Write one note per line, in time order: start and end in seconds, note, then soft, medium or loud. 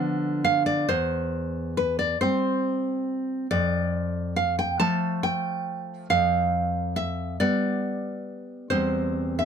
0.00 0.86 D3 medium
0.00 0.85 F3 medium
0.00 0.86 B3 medium
0.00 0.40 D5 medium
0.45 0.66 F5 medium
0.66 0.88 D5 medium
0.89 2.15 E2 medium
0.89 1.72 C5 loud
1.77 1.98 B4 medium
1.99 2.19 D5 medium
2.21 3.46 G3 medium
2.21 3.46 C4 medium
2.21 3.46 C5 loud
3.51 4.77 F2 medium
3.51 4.33 D5 loud
4.36 4.58 F5 medium
4.59 4.79 G5 medium
4.80 6.07 F3 medium
4.80 6.07 A3 medium
4.80 5.21 A5 loud
5.23 6.07 G5 loud
6.10 7.36 F2 medium
6.10 6.93 F5 loud
6.96 7.38 E5 medium
7.40 8.68 G3 medium
7.40 8.68 B3 medium
7.40 8.68 D5 loud
8.70 9.45 E2 medium
8.70 9.45 G3 soft
8.70 9.45 C4 soft
8.70 9.34 C5 medium
9.39 9.45 E5 medium